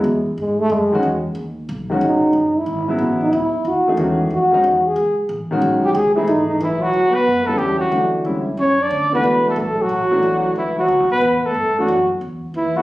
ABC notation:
X:1
M:3/4
L:1/8
Q:"Swing" 1/4=183
K:Alyd
V:1 name="Trumpet"
z6 | z6 | z6 | z6 |
z6 | z6 | z4 E F- | [K:D] F B2 A G F- |
F z3 c d- | d B2 A A F- | F4 E F- | F B2 A2 F- |
F z3 E F |]
V:2 name="Upright piano"
z4 z [D,G,CF] | z4 z [D,G,CF]- | [D,G,CF]2 z3 [C,F,B,E]- | [C,F,B,E]2 z3 [E,A,DG] |
[D,G,CF] z2 [D,G,CD] z2 | z3 [D,G,CF]3 | z [E,A,DG]3 z2 | [K:D] z3 [D,G,CE]3 |
[E,A,DF]2 [D,G,CE] z3 | z [E,A,DF]3 z2 | z [E,A,DF]3 z2 | z4 z [E,A,DF] |
z4 z [B,EFA] |]
V:3 name="Trombone"
G, z G, A, G,2- | G, z4 z | D3 E2 z | z E3 F2 |
z2 F3 G- | G z4 =G | G E D D E, F,- | [K:D] F, B,2 A, G, F,- |
F, z3 C D- | D B,2 A, A, F,- | F,4 E, F,- | F, B,2 A,2 F,- |
F, z3 E, F, |]
V:4 name="Upright bass" clef=bass
E,, z G,,2 F,,2 | E,,2 D,,2 B,,,2 | G,,,2 F,,,2 G,,,2 | A,,,2 C,, z D,,2 |
E,,2 =F,,2 E,,2 | C,,2 A,,,2 B,,,2 | C,,2 G,,,2 B,,,2 | [K:D] D,,2 F,,2 E,,2 |
D,,2 C,,2 F,,2 | D,,2 C,,2 B,,,2 | A,,, z B,,,2 C,,2 | (3D,, C,, A,,, E,, z G,,2 |
F,,2 E,,2 _E,, z |]